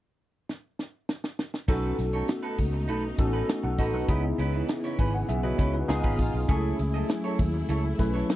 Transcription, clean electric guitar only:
1.68 1.96 D#4 medium
1.68 1.96 A4 medium
1.68 1.96 B4 loud
1.98 muted clean electric guitar stroke soft
2.13 2.27 D#4 medium
2.13 2.27 A4 medium
2.13 2.26 C#5 medium
2.28 muted clean electric guitar stroke soft
2.43 2.57 D#4 medium
2.43 2.58 A4 medium
2.43 2.58 B4 medium
2.58 muted clean electric guitar stroke soft
2.73 muted clean electric guitar stroke soft
2.88 3.05 D#4 medium
2.88 3.03 A4 medium
2.88 3.02 B4 medium
3.03 muted clean electric guitar stroke soft
3.18 muted clean electric guitar stroke soft
3.33 3.47 D#4 soft
3.33 3.47 A4 soft
3.33 3.46 B4 medium
3.48 muted clean electric guitar stroke soft
3.63 muted clean electric guitar stroke soft
3.78 3.94 D#4 medium
3.78 3.93 A4 medium
3.78 3.92 B4 medium
3.93 4.07 D#4 soft
3.93 4.07 A4 soft
3.93 4.07 B4 medium
4.08 4.25 C#4 medium
4.08 4.23 E4 medium
4.08 4.22 B4 medium
4.24 muted clean electric guitar stroke soft
4.38 4.52 C#4 medium
4.38 4.52 E4 medium
4.38 4.52 B4 medium
4.54 4.67 C#4 soft
4.54 4.67 E4 medium
4.54 4.67 B4 medium
4.69 muted clean electric guitar stroke soft
4.84 4.97 C#4 soft
4.84 4.97 E4 medium
4.84 4.97 C#5 medium
4.99 5.16 C#4 medium
4.99 5.13 E4 medium
4.99 5.12 B4 medium
5.13 muted clean electric guitar stroke soft
5.29 muted clean electric guitar stroke soft
5.43 5.57 C#4 soft
5.43 5.57 E4 soft
5.43 5.57 B4 medium
5.58 5.75 C#4 medium
5.58 5.73 E4 loud
5.58 5.72 B4 medium
5.74 muted clean electric guitar stroke soft
5.88 muted clean electric guitar stroke soft
6.04 6.17 C#4 medium
6.04 6.18 F4 medium
6.04 6.18 B4 medium
6.18 muted clean electric guitar stroke soft
6.34 muted clean electric guitar stroke soft
6.49 6.76 E4 medium
6.49 6.77 A4 medium
6.49 6.77 C#5 medium
6.79 muted clean electric guitar stroke soft
6.94 7.08 E4 medium
6.94 7.08 A4 medium
6.94 7.07 D#5 medium
7.09 muted clean electric guitar stroke soft
7.24 7.38 E4 medium
7.24 7.39 A4 medium
7.24 7.39 C#5 medium
7.39 muted clean electric guitar stroke soft
7.54 muted clean electric guitar stroke soft
7.69 7.86 E4 medium
7.69 7.83 A4 medium
7.69 7.83 C#5 medium
7.84 muted clean electric guitar stroke soft
7.99 muted clean electric guitar stroke soft
8.14 8.28 E4 medium
8.14 8.28 A4 medium
8.14 8.27 C#5 medium
8.29 muted clean electric guitar stroke soft

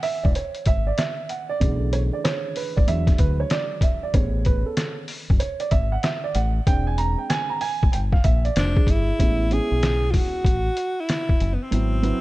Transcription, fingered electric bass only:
0.25 0.33 E1 loud
0.67 0.91 G#1 medium
1.61 2.09 B1 loud
2.78 2.86 A1 loud
2.88 3.12 E2 loud
3.19 3.43 D2 loud
4.14 4.62 A1 loud
5.30 5.38 F#1 loud
5.72 5.96 G#1 loud
6.35 6.59 A1 loud
6.67 7.15 E1 loud
7.83 7.91 G#1 loud
7.93 8.17 G1 medium
8.25 8.49 A#1 loud
8.57 8.80 F1 loud
8.87 9.11 G1 loud
9.20 9.59 A1 loud
9.72 10.19 B1 medium
10.45 10.69 A1 medium
11.41 11.56 F#1 medium
11.72 12.11 G#1 medium

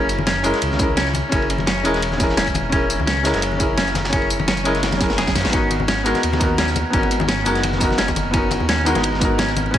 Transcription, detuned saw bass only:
0.00 0.52 F#1 loud
0.62 1.22 C#2 medium
1.32 1.83 F#1 loud
1.85 2.98 E1 medium
2.99 3.33 C#2 medium
3.34 4.29 F#1 medium
4.30 5.34 F#1 medium
5.36 5.46 F#2 medium
5.45 5.52 G#1 medium
5.53 6.14 G#1 loud
6.23 6.84 D#2 medium
6.93 7.45 G#1 medium
7.46 8.59 F#1 medium
8.61 8.94 D#2 medium
8.96 9.78 G#1 medium

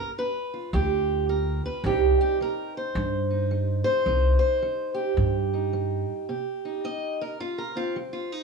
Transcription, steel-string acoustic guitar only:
0.00 0.13 G2 medium
0.18 0.70 G3 medium
0.18 0.73 B4 medium
0.54 1.82 F4 soft
0.73 1.25 D3 medium
0.73 1.29 G4 medium
1.29 1.80 G3 medium
1.29 1.64 A#4 medium
1.66 1.85 B4 medium
1.84 2.36 C3 medium
1.84 2.40 G3 soft
1.84 5.35 C4 soft
1.84 3.30 D#4 soft
1.84 2.20 G4 medium
2.21 2.41 G4 medium
2.41 2.92 G3 medium
2.41 2.76 A#4 medium
2.77 3.83 C5 medium
2.95 3.47 G2 medium
3.30 4.08 D#4 soft
3.51 4.02 G3 medium
3.84 4.38 C5 loud
4.08 4.59 C3 medium
4.08 5.52 D#4 soft
4.39 4.94 C5 medium
4.62 5.14 G3 medium
4.94 6.28 G4 medium
5.17 5.69 G2 medium
5.54 6.27 D#4 soft
5.73 6.25 G3 medium
6.29 6.80 C3 medium
6.29 7.21 G4 soft
6.65 7.40 D#4 soft
6.84 7.36 G3 medium
6.84 7.21 D#5 medium
7.21 7.40 A#4 medium
7.40 7.91 G2 medium
7.40 7.59 F4 medium
7.58 7.77 A#4 medium
7.75 8.43 C4 soft
7.75 7.95 F4 medium
7.96 8.43 G3 medium
8.13 8.32 F4 medium
8.32 8.43 D#4 medium

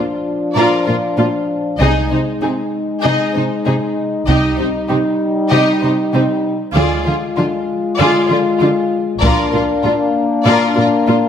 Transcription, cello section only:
0.56 0.64 A#2 soft
0.88 0.96 A#2 soft
1.18 1.26 A#2 soft
1.80 1.88 C3 soft
2.11 2.19 C3 soft
2.42 2.50 C3 soft
3.04 3.12 C3 soft
3.35 3.43 C3 soft
3.66 3.74 C3 soft
4.29 4.37 C3 medium
4.59 4.67 C3 soft
4.90 4.98 C3 soft
5.52 5.60 C3 medium
5.83 5.91 C3 soft
6.14 6.22 C3 soft
6.75 6.83 D3 medium
7.06 7.14 D3 soft
7.38 7.46 D3 soft
8.00 8.08 D3 medium
8.30 8.38 D3 soft
8.61 8.69 D3 soft
9.23 9.31 A#2 medium
9.53 9.61 A#2 soft
9.84 9.92 A#2 soft
10.46 10.54 A#2 medium
10.77 10.85 A#2 soft
11.08 11.16 A#2 soft

